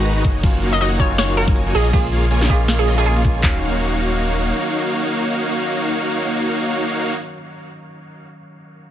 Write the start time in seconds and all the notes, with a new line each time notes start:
Already playing: G#1 D#3 G#3 B3 D#4 F#4 G#4 B4 A#5
0.06 closed hi-hat
0.16 G#3 D#4 F#4 B4 A#5
0.25 F#1 A#3 D#4 F#4 C#5 D#5, kick, closed hi-hat
0.41 D#3 F#3 A#3 C#4 D#4 F4 F#4 C#5 F5, kick, closed hi-hat, crash
0.62 A#3 D#4 F#4 C#5 F5, closed hi-hat
0.73 D#5
0.81 A#3 D#4 F#4 C#5 D#5 F#5, closed hi-hat
0.98 D#3 F#3 A#3 C#4 D#4 F4 F#4 C#5 G#5, kick, closed hi-hat
1.10 A#3 D#4 F#4 C#5 F5
1.18 A#3 D#4 F#4 C#5 F5, snare, closed hi-hat, crash
1.37 A#3 D#4 F#4 A#4 C#5 F#5, closed hi-hat
1.48 A#3 D#4 F#4 C#5 G#5, kick
1.56 closed hi-hat
1.66 A#3 D#4 F#4 C#5 G#5
1.75 A#1 A#3 F4 G#4 C#5 D#5, closed hi-hat
1.91 C#3 G#3 A#3 F4 G#4 C#5 F5, kick, closed hi-hat, crash
1.95 F4
2.12 A#3 F4 G#4 C#5 F5, closed hi-hat
2.31 A#3 F4 G#4 C#5 G#5, closed hi-hat
2.41 snare
2.48 C#3 G#3 A#3 F4 G#4 C#5 A#5, kick, closed hi-hat
2.52 F4
2.60 A#3 F4 G#4 C#5 F5
2.68 A#3 F4 G#4 C#5 F5, snare, closed hi-hat, crash
2.79 G#4
2.87 A#3 F4 G#4 C#5 D#5, closed hi-hat
2.96 C#3 G#3 A#3 F4 G#4 C#5 G#5
3.06 G#4, closed hi-hat
3.16 A#3 F4 G#4 C#5 F5
3.25 A#3 F4 G#4 C#5 G#5, kick, closed hi-hat
3.40 D#1 D#3 F#3 A#3 C#4 D#4 F#4 C#5 F5, kick, clap, floor tom
3.46 F5